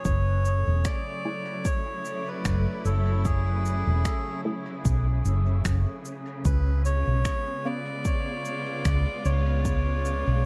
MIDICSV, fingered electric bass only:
0, 0, Header, 1, 2, 480
1, 0, Start_track
1, 0, Key_signature, 3, "minor"
1, 0, Tempo, 800000
1, 31, Time_signature, 4, 2, 24, 8
1, 6274, End_track
2, 0, Start_track
2, 0, Title_t, "Fingered electric bass"
2, 0, Program_c, 0, 33
2, 31, Note_on_c, 0, 30, 92
2, 379, Note_off_c, 0, 30, 0
2, 404, Note_on_c, 0, 28, 80
2, 498, Note_off_c, 0, 28, 0
2, 1471, Note_on_c, 0, 30, 90
2, 1588, Note_off_c, 0, 30, 0
2, 1711, Note_on_c, 0, 30, 89
2, 2298, Note_off_c, 0, 30, 0
2, 2323, Note_on_c, 0, 28, 79
2, 2418, Note_off_c, 0, 28, 0
2, 2911, Note_on_c, 0, 35, 72
2, 3125, Note_off_c, 0, 35, 0
2, 3151, Note_on_c, 0, 30, 86
2, 3365, Note_off_c, 0, 30, 0
2, 3391, Note_on_c, 0, 30, 80
2, 3508, Note_off_c, 0, 30, 0
2, 3871, Note_on_c, 0, 37, 95
2, 4218, Note_off_c, 0, 37, 0
2, 4244, Note_on_c, 0, 35, 82
2, 4338, Note_off_c, 0, 35, 0
2, 5311, Note_on_c, 0, 37, 92
2, 5428, Note_off_c, 0, 37, 0
2, 5552, Note_on_c, 0, 37, 89
2, 6139, Note_off_c, 0, 37, 0
2, 6165, Note_on_c, 0, 35, 82
2, 6259, Note_off_c, 0, 35, 0
2, 6274, End_track
0, 0, End_of_file